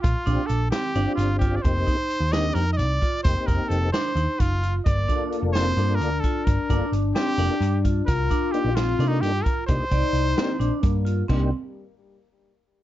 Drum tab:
CC |-------|-------|-------|-------|
HH |xxxxxxx|xxxxxxx|xxxxxxx|xxxxxxx|
SD |---o---|---o---|---o---|---o---|
BD |oo----o|oo----o|oo---o-|oo----o|

CC |-------|-------|-------|x------|
HH |xxxxxxx|xxxxxxx|xxxxxxx|-------|
SD |---o---|---oo--|---o---|-------|
BD |oo----o|oo----o|oo---o-|o------|